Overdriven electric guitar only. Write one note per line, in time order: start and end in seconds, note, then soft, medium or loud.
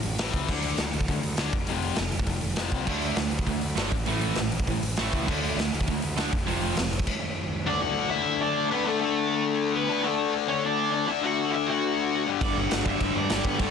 7.66 7.80 D4 medium
7.66 7.81 D5 loud
7.81 8.09 F#4 medium
7.81 8.09 F#5 loud
8.09 8.38 E4 medium
8.09 8.41 E5 loud
8.41 8.69 D4 medium
8.41 8.70 D5 loud
8.70 8.84 B3 medium
8.70 8.87 B4 medium
8.85 8.99 A3 medium
8.85 9.02 A4 loud
9.01 9.71 A3 medium
9.01 9.72 A4 loud
9.74 10.02 B3 medium
9.74 10.06 B4 medium
10.04 10.32 A3 medium
10.04 10.33 A4 medium
10.48 10.62 C#4 medium
10.48 10.65 C#5 loud
10.63 10.90 D4 medium
10.63 10.93 D5 loud
10.91 11.06 D4 medium
10.91 11.08 D5 medium
11.07 11.21 E4 medium
11.07 11.25 E5 loud
11.24 11.51 F#4 medium
11.24 11.51 F#5 loud
11.52 11.54 E4 medium
11.52 11.69 E5 loud
11.66 12.22 F#4 medium
11.66 12.28 F#5 loud
12.41 12.55 D4 medium
12.41 12.58 D5 medium
12.57 12.84 F#4 medium
12.57 12.86 F#5 loud
12.87 12.90 E4 medium
12.87 13.18 E5 loud
13.15 13.43 D4 medium
13.15 13.48 D5 medium
13.45 13.59 B3 medium
13.45 13.60 B4 medium
13.59 13.71 A3 medium
13.59 13.71 A4 medium